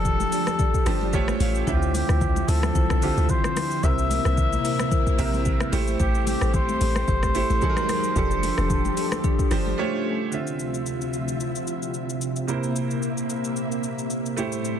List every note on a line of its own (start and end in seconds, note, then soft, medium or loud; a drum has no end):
0.00 0.27 F1 loud
0.00 0.38 F3 medium
0.00 1.12 F3 medium
0.00 0.38 D4 medium
0.00 1.12 D4 medium
0.00 0.29 G4 medium
0.00 0.39 G4 medium
0.00 1.65 G4 medium
0.00 0.29 A4 medium
0.00 0.39 A4 medium
0.00 1.12 A4 medium
0.00 1.41 A4 loud
0.00 0.29 D5 medium
0.05 kick medium
0.05 low conga medium
0.05 shaker medium
0.20 high conga medium
0.20 shaker medium
0.32 0.57 G4 medium
0.32 0.57 A4 medium
0.32 0.57 D5 medium
0.32 open hi-hat medium
0.32 shaker medium
0.47 cross-stick medium
0.47 high conga medium
0.47 shaker medium
0.59 0.97 G4 medium
0.59 0.98 A4 medium
0.59 0.98 D5 loud
0.59 kick loud
0.59 low conga medium
0.59 shaker medium
0.74 kick medium
0.74 shaker medium
0.86 1.32 G1 medium
0.86 1.13 F3 loud
0.86 1.13 D4 medium
0.86 1.12 G4 medium
0.86 1.13 C5 loud
0.86 1.12 A5 medium
0.86 cross-stick loud
0.86 open hi-hat soft
0.86 shaker medium
1.01 1.10 G4 medium
1.01 1.10 A4 medium
1.01 1.11 D5 medium
1.01 high conga medium
1.13 1.58 A3 loud
1.13 1.67 A3 medium
1.13 1.67 C#4 medium
1.13 1.58 F4 medium
1.13 1.58 G4 medium
1.13 1.58 C5 medium
1.13 1.58 C#5 loud
1.13 1.39 G5 medium
1.13 kick medium
1.13 low conga medium
1.13 shaker medium
1.28 cross-stick medium
1.28 high conga medium
1.28 shaker medium
1.40 1.63 A1 loud
1.40 1.52 F4 medium
1.40 1.52 G4 medium
1.40 1.52 C#5 medium
1.40 1.66 F5 medium
1.40 open hi-hat medium
1.40 high conga medium
1.40 shaker loud
1.55 shaker medium
1.67 2.03 D2 loud
1.67 2.54 D3 medium
1.67 3.81 D3 medium
1.67 3.81 F3 medium
1.67 3.81 C4 medium
1.67 2.54 C4 medium
1.67 1.79 E4 loud
1.67 1.75 E4 medium
1.67 1.79 F4 medium
1.67 1.93 G4 medium
1.67 1.79 C5 loud
1.67 3.81 E5 medium
1.67 2.55 E5 medium
1.67 kick loud
1.67 shaker medium
1.75 2.58 F4 medium
1.82 shaker medium
1.94 2.50 G4 medium
1.94 open hi-hat medium
1.94 high conga medium
1.94 shaker loud
2.09 2.43 D2 loud
2.09 2.45 E4 medium
2.09 2.46 F4 medium
2.09 2.46 C5 medium
2.09 cross-stick medium
2.09 high conga medium
2.09 shaker medium
2.21 kick medium
2.21 low conga medium
2.21 shaker medium
2.36 high conga medium
2.36 shaker medium
2.48 2.71 D2 loud
2.48 2.73 E4 medium
2.48 2.73 F4 medium
2.48 3.31 A4 medium
2.48 2.74 C5 medium
2.48 open hi-hat medium
2.48 shaker medium
2.63 cross-stick loud
2.63 high conga medium
2.63 shaker medium
2.75 3.11 C2 loud
2.75 3.14 E4 medium
2.75 3.14 F4 medium
2.75 3.14 C5 loud
2.75 kick loud
2.75 low conga medium
2.75 shaker medium
2.90 kick loud
2.90 cross-stick loud
2.90 shaker medium
3.02 3.68 D3 medium
3.02 3.68 C4 medium
3.02 3.69 F4 medium
3.02 3.69 G4 medium
3.02 open hi-hat medium
3.02 shaker medium
3.17 3.28 D2 medium
3.17 3.27 E4 medium
3.17 3.27 F4 medium
3.17 3.27 C5 medium
3.17 high conga medium
3.17 shaker soft
3.29 3.86 C5 loud
3.29 kick medium
3.29 low conga medium
3.29 shaker medium
3.44 cross-stick medium
3.44 high conga medium
3.44 shaker medium
3.56 3.68 E4 medium
3.56 3.68 F4 medium
3.56 3.68 C5 medium
3.56 cross-stick medium
3.56 open hi-hat medium
3.56 high conga medium
3.56 shaker loud
3.71 shaker medium
3.83 4.19 C2 loud
3.83 4.70 C3 medium
3.83 5.71 C3 medium
3.83 5.71 A#3 medium
3.83 4.71 C4 medium
3.83 3.95 E4 loud
3.83 5.71 E4 medium
3.83 3.95 A#4 medium
3.83 4.71 A#4 medium
3.83 3.95 C5 loud
3.83 5.73 E5 loud
3.83 4.71 E5 medium
3.83 kick loud
3.83 shaker medium
3.98 shaker medium
4.11 open hi-hat medium
4.11 high conga medium
4.11 shaker loud
4.25 4.59 C2 medium
4.25 4.62 E4 medium
4.25 4.62 A#4 medium
4.25 4.62 C5 medium
4.25 cross-stick medium
4.25 high conga medium
4.25 shaker medium
4.37 kick medium
4.37 low conga medium
4.37 shaker medium
4.52 high conga medium
4.52 shaker medium
4.64 4.90 E4 medium
4.64 4.90 A#4 medium
4.64 4.90 C5 medium
4.64 open hi-hat medium
4.64 shaker medium
4.79 cross-stick loud
4.79 high conga medium
4.79 shaker medium
4.91 5.30 E4 medium
4.91 5.30 A#4 medium
4.91 5.30 C5 loud
4.91 kick loud
4.91 low conga medium
4.91 shaker medium
5.07 kick loud
5.07 shaker medium
5.18 5.65 A#1 loud
5.18 5.73 C3 medium
5.18 5.73 C4 medium
5.18 5.73 A#4 medium
5.18 5.73 E5 loud
5.18 open hi-hat medium
5.18 shaker medium
5.33 5.43 E4 medium
5.33 5.43 A#4 medium
5.33 5.43 C5 medium
5.33 high conga medium
5.33 shaker medium
5.45 kick medium
5.45 low conga medium
5.45 shaker medium
5.60 cross-stick loud
5.60 high conga medium
5.60 shaker medium
5.72 5.96 A1 loud
5.72 6.60 A3 loud
5.72 7.60 A3 medium
5.72 7.60 C4 medium
5.72 6.60 E4 medium
5.72 5.84 G4 medium
5.72 7.60 G4 medium
5.72 6.60 G4 medium
5.72 5.84 A4 medium
5.72 5.84 C5 medium
5.72 6.60 C5 loud
5.72 open hi-hat medium
5.72 high conga medium
5.72 shaker loud
5.87 shaker medium
6.00 6.36 A1 loud
6.00 6.11 G4 medium
6.00 6.25 G4 loud
6.00 6.11 A4 medium
6.00 6.11 C5 loud
6.00 kick loud
6.00 shaker medium
6.15 shaker medium
6.27 6.56 G4 medium
6.27 open hi-hat medium
6.27 high conga medium
6.27 shaker loud
6.41 6.75 A1 loud
6.41 6.78 G4 medium
6.41 6.78 A4 medium
6.41 6.78 C5 medium
6.41 cross-stick medium
6.41 high conga medium
6.41 shaker medium
6.54 9.79 C5 loud
6.54 kick medium
6.54 low conga medium
6.54 shaker medium
6.69 high conga medium
6.69 shaker medium
6.81 7.04 A1 loud
6.81 7.06 G4 medium
6.81 7.06 A4 medium
6.81 7.06 C5 medium
6.81 open hi-hat medium
6.81 shaker loud
6.96 cross-stick medium
6.96 high conga medium
6.96 shaker medium
7.08 7.44 G1 loud
7.08 7.46 G4 medium
7.08 7.46 A4 medium
7.08 7.46 C5 loud
7.08 kick loud
7.08 low conga medium
7.08 shaker medium
7.23 kick medium
7.23 cross-stick medium
7.23 shaker medium
7.35 7.62 A3 medium
7.35 7.62 E4 medium
7.35 7.62 G4 medium
7.35 7.63 C5 loud
7.35 open hi-hat medium
7.35 shaker medium
7.50 7.60 A1 medium
7.50 7.59 G4 medium
7.50 7.59 A4 medium
7.50 7.59 C5 medium
7.50 high conga medium
7.50 shaker soft
7.62 8.06 F#3 loud
7.62 8.16 F#3 medium
7.62 8.15 D#4 medium
7.62 8.06 D#4 medium
7.62 8.15 G#4 medium
7.62 8.07 G#4 medium
7.62 7.70 A4 medium
7.62 8.15 A#4 medium
7.62 kick medium
7.62 low conga medium
7.62 shaker medium
7.70 8.10 A#4 loud
7.77 cross-stick loud
7.77 high conga medium
7.77 shaker medium
7.89 8.00 D#4 medium
7.89 8.00 G#4 medium
7.89 8.01 A#4 medium
7.89 cross-stick medium
7.89 open hi-hat medium
7.89 high conga medium
7.89 shaker loud
8.04 shaker medium
8.16 8.52 F1 loud
8.16 9.76 F3 medium
8.16 9.03 F3 medium
8.16 8.27 D4 medium
8.16 9.76 D4 medium
8.16 9.03 D4 medium
8.16 10.30 G4 medium
8.16 8.27 G4 medium
8.16 9.03 G4 medium
8.16 9.76 A4 loud
8.16 8.28 A4 loud
8.16 9.04 A4 loud
8.16 kick loud
8.16 shaker medium
8.31 shaker medium
8.43 open hi-hat medium
8.43 high conga medium
8.43 shaker loud
8.58 8.92 F1 loud
8.58 8.94 D4 medium
8.58 8.94 G4 medium
8.58 8.94 A4 medium
8.58 cross-stick medium
8.58 high conga medium
8.58 shaker medium
8.70 kick medium
8.70 low conga medium
8.70 shaker medium
8.85 high conga medium
8.85 shaker medium
8.97 9.22 D4 medium
8.97 9.22 G4 medium
8.97 9.22 A4 medium
8.97 open hi-hat medium
8.97 shaker medium
9.12 cross-stick loud
9.12 high conga medium
9.12 shaker medium
9.24 9.62 D4 medium
9.24 9.62 G4 medium
9.24 9.63 A4 loud
9.24 kick loud
9.24 low conga medium
9.24 shaker medium
9.39 kick loud
9.39 shaker medium
9.51 9.74 G1 medium
9.51 9.78 F3 medium
9.51 9.78 D4 medium
9.51 9.77 G4 medium
9.51 9.78 C5 loud
9.51 cross-stick loud
9.51 open hi-hat soft
9.51 shaker medium
9.66 9.75 D4 medium
9.66 9.75 G4 medium
9.66 9.75 A4 medium
9.66 high conga medium
9.78 10.22 A3 loud
9.78 10.32 A3 medium
9.78 10.32 C#4 medium
9.78 10.23 F4 medium
9.78 10.23 G4 medium
9.78 10.23 C5 medium
9.78 10.23 C#5 loud
10.31 12.46 D2 medium
10.31 14.33 C3 medium
10.31 12.44 D3 medium
10.31 12.44 C4 medium
10.31 12.46 F4 medium
10.31 12.45 F4 medium
10.31 12.46 E5 medium
10.31 12.45 E5 medium
10.31 shaker medium
10.47 shaker medium
10.59 shaker medium
10.74 shaker soft
10.86 shaker medium
11.01 shaker soft
11.13 shaker medium
11.28 shaker medium
11.40 shaker medium
11.56 shaker medium
11.67 shaker medium
11.82 shaker soft
11.94 shaker medium
12.10 shaker medium
12.22 shaker medium
12.36 shaker medium
12.47 14.33 C3 medium
12.47 14.34 A#3 medium
12.47 14.36 A#3 medium
12.47 14.34 E4 medium
12.47 14.35 C5 medium
12.47 14.36 E5 medium
12.47 shaker medium
12.63 shaker medium
12.76 shaker loud
12.91 shaker soft
13.03 shaker medium
13.18 shaker medium
13.30 shaker medium
13.44 shaker medium
13.56 shaker medium
13.72 shaker soft
13.84 shaker medium
13.99 shaker soft
14.10 shaker medium
14.26 shaker medium
14.37 14.80 A2 medium
14.37 14.80 G3 medium
14.37 14.80 A3 medium
14.37 14.80 E4 medium
14.37 14.80 G4 medium
14.37 14.80 C5 medium
14.37 shaker loud
14.52 shaker medium
14.65 shaker medium